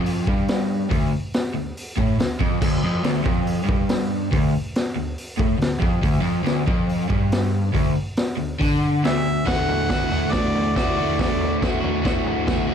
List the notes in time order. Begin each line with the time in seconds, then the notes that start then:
Already playing: F2
0.06 open hi-hat
0.27 G2, kick
0.48 snare, open hi-hat
0.89 D2, kick, open hi-hat
1.34 snare, open hi-hat
1.54 D2
1.77 open hi-hat
1.97 A2, kick
2.20 D2, snare, open hi-hat
2.40 F2, kick
2.61 D2, kick, crash
2.84 F2
3.04 D2, snare, open hi-hat
3.24 F2, kick
3.47 open hi-hat
3.65 G2
3.69 kick
3.89 snare, open hi-hat
4.31 D2, kick, open hi-hat
4.75 snare, open hi-hat
4.96 D2
5.18 open hi-hat
5.38 A2, kick
5.58 D2, snare, open hi-hat
5.79 F2, kick
6.02 D2, kick, open hi-hat
6.21 F2
6.44 D2, snare, open hi-hat
6.67 F2, kick
6.89 open hi-hat
7.09 G2, kick
7.32 snare, open hi-hat
7.73 D2, kick, open hi-hat
8.17 snare, open hi-hat
8.37 D2
8.60 D3, kick, open hi-hat
9.03 D2 E5, snare, open hi-hat
9.45 D2 A2 D3 A3 F#4 F#5, kick, snare, floor tom
9.69 floor tom
9.88 A2 D3 A3 F#4, kick, snare, floor tom
10.09 D3 A3 F#4, floor tom
10.30 A2 D3 A3 F#4 D5, kick, snare, floor tom
10.55 floor tom
10.75 D2 A2 D3 A3 F#4 D5, kick, snare, floor tom
10.97 D3 A3 F#4, floor tom
11.18 D2 A2 D3 A3 F#4 D5, kick, snare, floor tom
11.41 floor tom
11.61 A2 D3 A3 F#4, kick, snare, floor tom
11.80 D3 A3 F#4, floor tom
12.02 A2 D3 A3 F#4, kick, snare, floor tom
12.26 floor tom
12.46 D2 A2 D3 A3 F#4, kick, snare, floor tom
12.66 D3 A3 F#4, floor tom